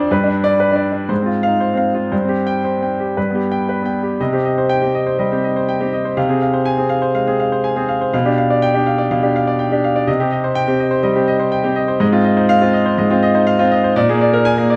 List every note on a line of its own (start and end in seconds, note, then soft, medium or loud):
0.00 0.14 F2 medium
0.00 0.14 D4 medium
0.00 0.14 C5 medium
0.00 0.14 D5 medium
0.11 1.07 G2 medium
0.11 0.38 B4 medium
0.24 0.26 D4 medium
0.24 0.54 D4 medium
0.44 0.70 D5 medium
0.60 0.86 B4 medium
0.72 0.91 D4 soft
0.76 1.03 D5 medium
0.92 1.09 D4 soft
1.09 2.08 G#2 medium
1.09 1.36 C5 soft
1.22 1.42 C4 soft
1.26 1.53 F4 soft
1.43 1.60 D#4 soft
1.43 1.70 F5 medium
1.60 1.88 C5 soft
1.73 1.94 C4 soft
1.73 2.05 F5 soft
1.94 2.12 F4 soft
2.12 3.13 G2 medium
2.12 2.40 C5 soft
2.25 2.46 C4 soft
2.29 2.57 G4 soft
2.47 2.75 G5 medium
2.64 2.92 C5 soft
2.78 2.99 C4 soft
2.83 3.10 G5 soft
3.00 3.17 G4 soft
3.17 4.17 G2 soft
3.17 3.44 B4 soft
3.30 3.50 B3 soft
3.35 3.62 G4 soft
3.52 3.78 G5 medium
3.69 3.96 B4 soft
3.82 4.02 B3 soft
3.82 4.13 G5 soft
4.03 4.20 G4 soft
4.20 5.16 C3 medium
4.20 4.40 D#5 medium
4.33 4.52 C4 soft
4.33 4.52 G4 medium
4.45 4.65 D#5 medium
4.58 4.77 C5 medium
4.69 4.89 G5 medium
4.82 5.02 C4 soft
4.82 5.02 G4 soft
4.95 5.14 D#5 soft
5.06 5.26 C5 soft
5.19 5.39 G3 soft
5.19 5.39 D#5 soft
5.32 5.51 C4 soft
5.32 5.51 G4 soft
5.44 5.63 D#5 soft
5.56 5.75 C5 soft
5.69 5.88 G5 medium
5.81 6.00 C4 soft
5.81 6.00 G4 medium
5.93 6.12 D#5 soft
6.05 6.17 C5 soft
6.17 7.12 C3 medium
6.17 6.36 F5 medium
6.29 6.49 C4 soft
6.29 6.48 G#4 soft
6.41 6.61 F5 soft
6.53 6.73 C5 medium
6.65 6.85 G#5 medium
6.78 6.97 C4 soft
6.78 6.97 G#4 soft
6.89 7.09 F5 medium
7.02 7.22 C5 medium
7.14 7.34 G#3 soft
7.14 7.34 F5 medium
7.27 7.47 C4 soft
7.27 7.47 G#4 medium
7.40 7.59 F5 medium
7.52 7.71 C5 medium
7.64 7.84 G#5 medium
7.76 7.96 C4 medium
7.76 7.96 G#4 medium
7.89 8.08 F5 medium
8.01 8.13 C5 soft
8.13 9.08 B2 medium
8.13 8.33 F5 medium
8.25 8.45 D4 soft
8.25 8.45 G4 medium
8.38 8.57 F5 medium
8.50 8.70 D5 soft
8.62 8.82 G5 medium
8.74 8.94 D4 soft
8.74 8.94 G4 soft
8.86 9.06 F5 medium
8.98 9.18 D5 medium
9.11 10.05 B2 medium
9.11 9.30 F5 medium
9.23 9.42 D4 soft
9.23 9.42 G4 medium
9.36 9.55 F5 medium
9.47 9.67 D5 medium
9.59 9.78 G5 medium
9.72 9.91 D4 soft
9.72 9.91 G4 medium
9.84 10.03 F5 medium
9.96 10.08 D5 soft
10.07 11.01 C3 medium
10.07 10.27 D#5 medium
10.20 10.39 C4 medium
10.20 10.39 G4 medium
10.32 10.51 D#5 medium
10.44 10.63 C5 medium
10.55 10.75 G5 medium
10.68 10.87 C4 soft
10.68 10.87 G4 medium
10.79 10.99 D#5 medium
10.91 11.11 C5 medium
11.03 11.23 G3 medium
11.03 11.23 D#5 medium
11.16 11.35 C4 medium
11.16 11.35 G4 medium
11.28 11.47 D#5 medium
11.40 11.59 C5 medium
11.52 11.72 G5 medium
11.64 11.84 C4 medium
11.64 11.84 G4 medium
11.76 11.96 D#5 medium
11.88 12.00 C5 medium
12.00 12.95 G#2 medium
12.00 12.20 D#5 medium
12.12 12.32 C4 medium
12.12 12.32 F4 medium
12.24 12.44 D#5 medium
12.36 12.49 D#4 medium
12.36 12.56 C5 medium
12.49 12.69 F5 medium
12.61 12.81 C4 medium
12.61 12.81 F4 medium
12.73 12.93 D#5 medium
12.86 13.05 C5 medium
12.98 13.93 G#2 medium
12.98 13.17 D#5 medium
13.10 13.30 C4 medium
13.10 13.30 F4 medium
13.23 13.42 D#5 medium
13.35 13.47 D#4 medium
13.35 13.54 C5 medium
13.47 13.66 F5 medium
13.59 13.79 C4 medium
13.59 13.79 F4 medium
13.71 13.91 D#5 medium
13.84 13.96 C5 medium
13.96 14.76 A#2 medium
13.96 14.16 D5 medium
14.09 14.28 A#3 medium
14.09 14.28 G#4 medium
14.21 14.40 D5 medium
14.33 14.53 A#4 medium
14.45 14.65 G#5 medium
14.58 14.76 A#3 medium
14.58 14.76 G#4 medium
14.70 14.76 D5 medium